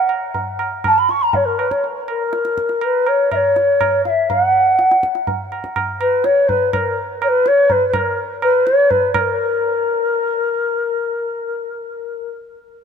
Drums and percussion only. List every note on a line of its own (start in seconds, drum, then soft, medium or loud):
0.09 tabla na medium
0.34 tabla tin medium
0.34 tabla ge medium
0.59 tabla na medium
0.84 tabla na medium
0.84 tabla ge medium
1.09 tabla te medium
1.33 tabla tin medium
1.33 tabla ge medium
1.59 tabla na medium
1.71 tabla ke medium
1.84 tabla tin medium
2.08 tabla na medium
2.33 tabla te medium
2.45 tabla te medium
2.58 tabla ke medium
2.69 tabla te medium
2.81 tabla na medium
3.06 tabla na medium
3.32 tabla na medium
3.32 tabla ge medium
3.56 tabla te medium
3.81 tabla na medium
3.81 tabla ge medium
4.05 tabla te medium
4.30 tabla tin loud
4.30 tabla ge loud
4.79 tabla te medium
4.91 tabla te medium
5.03 tabla ke medium
5.15 tabla te medium
5.27 tabla tin medium
5.27 tabla ge medium
5.52 tabla na medium
5.64 tabla ke medium
5.76 tabla na medium
5.76 tabla ge medium
6.01 tabla na medium
6.24 tabla te medium
6.49 tabla tin medium
6.49 tabla ge medium
6.73 tabla na loud
6.73 tabla ge medium
7.22 tabla na medium
7.46 tabla te medium
7.70 tabla tin medium
7.70 tabla ge medium
7.94 tabla na loud
7.94 tabla ge medium
8.42 tabla na medium
8.67 tabla te medium
8.91 tabla tin medium
8.91 tabla ge medium
9.14 tabla na loud
9.14 tabla ge medium